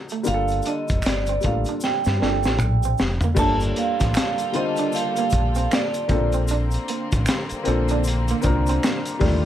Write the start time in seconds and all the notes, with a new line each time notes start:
Already playing: F#3 C4 D4 D#4 A4
0.09 A3, closed hi-hat, shaker
0.23 D3 G3 A#3 F4, closed hi-hat, shaker
0.28 G1 G4 F5
0.34 A4
0.48 closed hi-hat, shaker
0.62 closed hi-hat, shaker
0.67 D4 D#5
0.88 F1, kick, closed hi-hat, shaker
1.02 G1 D5, finger snap, closed hi-hat, shaker
1.06 snare
1.26 C4, closed hi-hat, shaker
1.41 G3 A#3 D4 F4, kick, closed hi-hat, shaker
1.45 A1 A4 F5, muted clean electric guitar stroke
1.65 closed hi-hat, shaker
1.69 D4
1.80 G5, snare, shaker
2.04 G2, snare, shaker
2.18 G3 A#3 D4 F4
2.22 G1 D4 A4, snare
2.43 A1, snare, shaker
2.59 A#1, finger snap, mid tom, shaker
2.83 C4, shaker
2.98 F1, muted clean electric guitar stroke, snare, shaker
3.21 A#3, floor tom, shaker
3.35 G1 G3 A#3 D4 F4 A4 A5, kick, crash, shaker
3.39 D4 A4
3.60 closed hi-hat, shaker
3.76 A#3 F5, closed hi-hat
4.00 A1, kick, snare, closed hi-hat, shaker
4.14 finger snap, muted clean electric guitar stroke, snare, closed hi-hat, shaker
4.38 closed hi-hat, shaker
4.52 D3 G3 A#3 C4 F4 D#5, closed hi-hat
4.57 C5
4.76 D4, closed hi-hat, shaker
4.92 F5, closed hi-hat, shaker
5.16 A#3, closed hi-hat, shaker
5.30 A#1, muted clean electric guitar stroke, kick, closed hi-hat, shaker
5.55 C4, closed hi-hat, shaker
5.71 A#3 D5, finger snap, snare, closed hi-hat, shaker
5.94 closed hi-hat, shaker
6.08 A#1 D3 A#3 C4 D4 F4, muted clean electric guitar stroke, kick, closed hi-hat
6.12 A4
6.32 C4, closed hi-hat, shaker
6.48 D4, closed hi-hat, shaker
6.71 closed hi-hat, shaker
6.88 A#3, closed hi-hat
7.12 A1, kick, closed hi-hat, shaker
7.26 finger snap, muted clean electric guitar stroke, snare, closed hi-hat, shaker
7.49 muted fingered electric bass stroke, closed hi-hat, shaker
7.64 A#1 A#3 C4 D4 F4, closed hi-hat
7.68 C4 A4
7.88 D4, closed hi-hat, shaker
8.04 closed hi-hat, shaker
8.28 A#3, closed hi-hat, shaker
8.41 A#3 C4 D4 F4, kick, closed hi-hat, shaker
8.46 C2 A#4, muted clean electric guitar stroke
8.67 C4, closed hi-hat, shaker
8.83 A#3, finger snap, snare, closed hi-hat, shaker
9.05 closed hi-hat, shaker
9.19 D#2 F3 G3 A#3 D4 F4 G4, kick, open hi-hat
9.24 A3, muted clean electric guitar stroke, snare